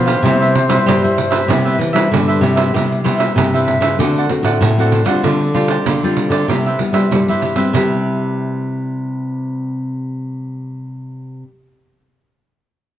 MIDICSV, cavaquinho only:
0, 0, Header, 1, 3, 480
1, 0, Start_track
1, 0, Key_signature, 0, "major"
1, 0, Tempo, 625652
1, 189, Time_signature, 4, 2, 24, 8
1, 9958, End_track
2, 0, Start_track
2, 0, Title_t, "Cavaquinho"
2, 0, Program_c, 0, 24
2, 45, Note_on_c, 0, 77, 64
2, 54, Note_on_c, 0, 71, 60
2, 58, Note_on_c, 0, 67, 54
2, 168, Note_off_c, 0, 77, 0
2, 172, Note_off_c, 0, 71, 0
2, 174, Note_off_c, 0, 67, 0
2, 192, Note_on_c, 0, 67, 43
2, 197, Note_on_c, 0, 72, 53
2, 202, Note_on_c, 0, 71, 53
2, 204, Note_on_c, 0, 76, 58
2, 301, Note_off_c, 0, 67, 0
2, 302, Note_off_c, 0, 76, 0
2, 303, Note_off_c, 0, 72, 0
2, 306, Note_off_c, 0, 71, 0
2, 311, Note_on_c, 0, 76, 66
2, 322, Note_on_c, 0, 71, 61
2, 326, Note_on_c, 0, 72, 52
2, 413, Note_off_c, 0, 72, 0
2, 415, Note_off_c, 0, 71, 0
2, 417, Note_off_c, 0, 76, 0
2, 531, Note_on_c, 0, 76, 67
2, 534, Note_on_c, 0, 71, 58
2, 540, Note_on_c, 0, 72, 54
2, 650, Note_off_c, 0, 76, 0
2, 652, Note_off_c, 0, 71, 0
2, 655, Note_off_c, 0, 72, 0
2, 663, Note_on_c, 0, 67, 75
2, 666, Note_on_c, 0, 72, 69
2, 674, Note_on_c, 0, 71, 70
2, 676, Note_on_c, 0, 76, 76
2, 776, Note_off_c, 0, 67, 0
2, 777, Note_off_c, 0, 72, 0
2, 777, Note_off_c, 0, 76, 0
2, 781, Note_off_c, 0, 71, 0
2, 787, Note_on_c, 0, 76, 49
2, 801, Note_on_c, 0, 72, 39
2, 993, Note_off_c, 0, 76, 0
2, 1002, Note_on_c, 0, 76, 66
2, 1003, Note_off_c, 0, 72, 0
2, 1008, Note_on_c, 0, 71, 65
2, 1013, Note_on_c, 0, 72, 55
2, 1125, Note_off_c, 0, 76, 0
2, 1128, Note_off_c, 0, 71, 0
2, 1130, Note_off_c, 0, 72, 0
2, 1136, Note_on_c, 0, 67, 48
2, 1146, Note_on_c, 0, 72, 46
2, 1147, Note_on_c, 0, 71, 54
2, 1151, Note_on_c, 0, 76, 50
2, 1252, Note_off_c, 0, 67, 0
2, 1256, Note_off_c, 0, 72, 0
2, 1257, Note_off_c, 0, 71, 0
2, 1259, Note_off_c, 0, 76, 0
2, 1268, Note_on_c, 0, 76, 60
2, 1272, Note_on_c, 0, 71, 60
2, 1281, Note_on_c, 0, 72, 51
2, 1369, Note_off_c, 0, 72, 0
2, 1370, Note_off_c, 0, 71, 0
2, 1372, Note_off_c, 0, 76, 0
2, 1481, Note_on_c, 0, 76, 67
2, 1489, Note_on_c, 0, 71, 59
2, 1494, Note_on_c, 0, 72, 49
2, 1723, Note_off_c, 0, 76, 0
2, 1727, Note_off_c, 0, 71, 0
2, 1730, Note_off_c, 0, 72, 0
2, 1748, Note_on_c, 0, 76, 66
2, 1756, Note_on_c, 0, 71, 64
2, 1762, Note_on_c, 0, 72, 58
2, 1846, Note_off_c, 0, 72, 0
2, 1849, Note_on_c, 0, 67, 44
2, 1851, Note_off_c, 0, 71, 0
2, 1851, Note_off_c, 0, 76, 0
2, 1855, Note_on_c, 0, 72, 48
2, 1860, Note_on_c, 0, 71, 47
2, 1860, Note_on_c, 0, 76, 48
2, 1954, Note_off_c, 0, 76, 0
2, 1959, Note_off_c, 0, 71, 0
2, 1961, Note_off_c, 0, 72, 0
2, 1963, Note_on_c, 0, 76, 66
2, 1967, Note_off_c, 0, 67, 0
2, 1969, Note_on_c, 0, 71, 60
2, 1970, Note_on_c, 0, 72, 54
2, 2084, Note_off_c, 0, 76, 0
2, 2087, Note_off_c, 0, 71, 0
2, 2088, Note_off_c, 0, 72, 0
2, 2099, Note_on_c, 0, 67, 41
2, 2105, Note_on_c, 0, 72, 46
2, 2107, Note_on_c, 0, 71, 46
2, 2113, Note_on_c, 0, 76, 59
2, 2212, Note_off_c, 0, 67, 0
2, 2215, Note_off_c, 0, 72, 0
2, 2216, Note_off_c, 0, 71, 0
2, 2219, Note_off_c, 0, 76, 0
2, 2332, Note_on_c, 0, 67, 61
2, 2336, Note_on_c, 0, 72, 66
2, 2340, Note_on_c, 0, 71, 61
2, 2342, Note_on_c, 0, 76, 73
2, 2435, Note_off_c, 0, 76, 0
2, 2442, Note_off_c, 0, 71, 0
2, 2444, Note_on_c, 0, 76, 56
2, 2447, Note_off_c, 0, 72, 0
2, 2449, Note_off_c, 0, 67, 0
2, 2451, Note_on_c, 0, 71, 51
2, 2456, Note_on_c, 0, 72, 52
2, 2564, Note_off_c, 0, 76, 0
2, 2568, Note_off_c, 0, 71, 0
2, 2570, Note_off_c, 0, 72, 0
2, 2592, Note_on_c, 0, 67, 45
2, 2594, Note_on_c, 0, 72, 42
2, 2597, Note_on_c, 0, 71, 49
2, 2602, Note_on_c, 0, 76, 55
2, 2698, Note_off_c, 0, 67, 0
2, 2699, Note_off_c, 0, 72, 0
2, 2700, Note_off_c, 0, 71, 0
2, 2703, Note_off_c, 0, 76, 0
2, 2718, Note_on_c, 0, 76, 59
2, 2726, Note_on_c, 0, 71, 55
2, 2728, Note_on_c, 0, 72, 52
2, 2926, Note_off_c, 0, 76, 0
2, 2930, Note_off_c, 0, 71, 0
2, 2935, Note_on_c, 0, 76, 56
2, 2938, Note_off_c, 0, 72, 0
2, 2940, Note_on_c, 0, 71, 60
2, 2947, Note_on_c, 0, 72, 50
2, 3049, Note_off_c, 0, 76, 0
2, 3052, Note_off_c, 0, 71, 0
2, 3055, Note_off_c, 0, 72, 0
2, 3076, Note_on_c, 0, 62, 41
2, 3080, Note_on_c, 0, 72, 46
2, 3084, Note_on_c, 0, 74, 45
2, 3091, Note_on_c, 0, 78, 52
2, 3180, Note_off_c, 0, 62, 0
2, 3182, Note_off_c, 0, 72, 0
2, 3184, Note_off_c, 0, 74, 0
2, 3187, Note_off_c, 0, 78, 0
2, 3208, Note_on_c, 0, 78, 63
2, 3214, Note_on_c, 0, 74, 55
2, 3217, Note_on_c, 0, 72, 46
2, 3306, Note_off_c, 0, 78, 0
2, 3309, Note_off_c, 0, 74, 0
2, 3310, Note_off_c, 0, 72, 0
2, 3415, Note_on_c, 0, 78, 60
2, 3422, Note_on_c, 0, 74, 53
2, 3427, Note_on_c, 0, 72, 51
2, 3649, Note_off_c, 0, 78, 0
2, 3653, Note_off_c, 0, 74, 0
2, 3655, Note_off_c, 0, 72, 0
2, 3683, Note_on_c, 0, 78, 65
2, 3688, Note_on_c, 0, 74, 61
2, 3693, Note_on_c, 0, 72, 45
2, 3774, Note_off_c, 0, 72, 0
2, 3777, Note_off_c, 0, 74, 0
2, 3779, Note_on_c, 0, 62, 41
2, 3781, Note_off_c, 0, 78, 0
2, 3783, Note_on_c, 0, 72, 44
2, 3787, Note_on_c, 0, 74, 47
2, 3790, Note_on_c, 0, 78, 45
2, 3879, Note_off_c, 0, 78, 0
2, 3884, Note_off_c, 0, 74, 0
2, 3888, Note_on_c, 0, 78, 60
2, 3891, Note_off_c, 0, 62, 0
2, 3891, Note_off_c, 0, 72, 0
2, 3893, Note_on_c, 0, 74, 57
2, 3900, Note_on_c, 0, 72, 51
2, 4005, Note_off_c, 0, 78, 0
2, 4008, Note_off_c, 0, 74, 0
2, 4012, Note_off_c, 0, 72, 0
2, 4031, Note_on_c, 0, 65, 48
2, 4036, Note_on_c, 0, 67, 44
2, 4037, Note_on_c, 0, 72, 46
2, 4040, Note_on_c, 0, 74, 56
2, 4137, Note_off_c, 0, 65, 0
2, 4139, Note_off_c, 0, 67, 0
2, 4140, Note_off_c, 0, 72, 0
2, 4141, Note_off_c, 0, 74, 0
2, 4254, Note_on_c, 0, 65, 64
2, 4255, Note_on_c, 0, 67, 62
2, 4259, Note_on_c, 0, 72, 68
2, 4262, Note_on_c, 0, 74, 70
2, 4355, Note_off_c, 0, 74, 0
2, 4364, Note_off_c, 0, 72, 0
2, 4365, Note_on_c, 0, 74, 57
2, 4367, Note_off_c, 0, 67, 0
2, 4368, Note_off_c, 0, 65, 0
2, 4374, Note_on_c, 0, 72, 55
2, 4376, Note_on_c, 0, 67, 49
2, 4484, Note_off_c, 0, 74, 0
2, 4488, Note_off_c, 0, 72, 0
2, 4489, Note_off_c, 0, 67, 0
2, 4504, Note_on_c, 0, 65, 38
2, 4506, Note_on_c, 0, 67, 48
2, 4510, Note_on_c, 0, 72, 44
2, 4514, Note_on_c, 0, 74, 47
2, 4613, Note_off_c, 0, 65, 0
2, 4614, Note_off_c, 0, 67, 0
2, 4616, Note_off_c, 0, 72, 0
2, 4618, Note_off_c, 0, 74, 0
2, 4634, Note_on_c, 0, 74, 58
2, 4639, Note_on_c, 0, 72, 51
2, 4645, Note_on_c, 0, 67, 47
2, 4836, Note_off_c, 0, 74, 0
2, 4843, Note_off_c, 0, 72, 0
2, 4845, Note_on_c, 0, 74, 62
2, 4847, Note_off_c, 0, 67, 0
2, 4852, Note_on_c, 0, 72, 53
2, 4856, Note_on_c, 0, 67, 54
2, 4964, Note_off_c, 0, 74, 0
2, 4968, Note_off_c, 0, 72, 0
2, 4969, Note_off_c, 0, 67, 0
2, 4990, Note_on_c, 0, 67, 42
2, 4993, Note_on_c, 0, 72, 46
2, 4997, Note_on_c, 0, 71, 42
2, 5002, Note_on_c, 0, 76, 46
2, 5096, Note_off_c, 0, 67, 0
2, 5098, Note_off_c, 0, 72, 0
2, 5100, Note_off_c, 0, 71, 0
2, 5102, Note_off_c, 0, 76, 0
2, 5112, Note_on_c, 0, 76, 52
2, 5120, Note_on_c, 0, 71, 50
2, 5127, Note_on_c, 0, 72, 44
2, 5206, Note_off_c, 0, 72, 0
2, 5209, Note_off_c, 0, 71, 0
2, 5210, Note_off_c, 0, 76, 0
2, 5321, Note_on_c, 0, 76, 55
2, 5330, Note_on_c, 0, 71, 47
2, 5333, Note_on_c, 0, 72, 46
2, 5562, Note_off_c, 0, 76, 0
2, 5566, Note_off_c, 0, 71, 0
2, 5568, Note_off_c, 0, 72, 0
2, 5594, Note_on_c, 0, 76, 57
2, 5601, Note_on_c, 0, 71, 55
2, 5608, Note_on_c, 0, 72, 46
2, 5685, Note_off_c, 0, 72, 0
2, 5690, Note_off_c, 0, 71, 0
2, 5690, Note_on_c, 0, 67, 35
2, 5695, Note_off_c, 0, 76, 0
2, 5695, Note_on_c, 0, 72, 35
2, 5699, Note_on_c, 0, 71, 41
2, 5704, Note_on_c, 0, 76, 41
2, 5793, Note_off_c, 0, 76, 0
2, 5801, Note_off_c, 0, 71, 0
2, 5802, Note_on_c, 0, 76, 61
2, 5805, Note_off_c, 0, 72, 0
2, 5806, Note_off_c, 0, 67, 0
2, 5810, Note_on_c, 0, 71, 52
2, 5814, Note_on_c, 0, 72, 48
2, 5923, Note_off_c, 0, 76, 0
2, 5927, Note_off_c, 0, 71, 0
2, 5928, Note_off_c, 0, 72, 0
2, 5933, Note_on_c, 0, 67, 54
2, 5942, Note_on_c, 0, 72, 55
2, 5951, Note_on_c, 0, 71, 60
2, 5954, Note_on_c, 0, 76, 61
2, 8798, Note_off_c, 0, 67, 0
2, 8806, Note_off_c, 0, 72, 0
2, 8815, Note_off_c, 0, 71, 0
2, 8818, Note_off_c, 0, 76, 0
2, 9958, End_track
3, 0, Start_track
3, 0, Title_t, "Muted cavaquinho strokes"
3, 421, Note_on_c, 9, 29, 41
3, 498, Note_off_c, 9, 29, 0
3, 1378, Note_on_c, 9, 29, 37
3, 1455, Note_off_c, 9, 29, 0
3, 2229, Note_on_c, 9, 29, 35
3, 2306, Note_off_c, 9, 29, 0
3, 3313, Note_on_c, 9, 29, 32
3, 3389, Note_off_c, 9, 29, 0
3, 4151, Note_on_c, 9, 29, 30
3, 4227, Note_off_c, 9, 29, 0
3, 5214, Note_on_c, 9, 29, 29
3, 5291, Note_off_c, 9, 29, 0
3, 9958, End_track
0, 0, End_of_file